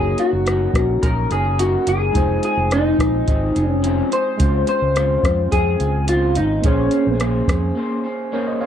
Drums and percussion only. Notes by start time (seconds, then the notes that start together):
0.18 closed hi-hat
0.47 cross-stick, closed hi-hat
0.74 kick, cross-stick, closed hi-hat
1.03 kick, closed hi-hat
1.31 closed hi-hat
1.59 closed hi-hat
1.87 closed hi-hat
2.15 kick, closed hi-hat
2.43 closed hi-hat
2.71 cross-stick, closed hi-hat
2.99 kick, cross-stick, closed hi-hat
3.28 kick, closed hi-hat
3.56 closed hi-hat
3.84 closed hi-hat
4.12 closed hi-hat
4.40 kick, closed hi-hat
4.67 closed hi-hat
4.96 cross-stick, closed hi-hat
5.23 kick, cross-stick, closed hi-hat
5.52 kick, closed hi-hat
5.80 closed hi-hat
6.08 closed hi-hat
6.35 closed hi-hat
6.64 kick, closed hi-hat
6.91 closed hi-hat
7.20 cross-stick, closed hi-hat
7.48 kick, cross-stick, closed hi-hat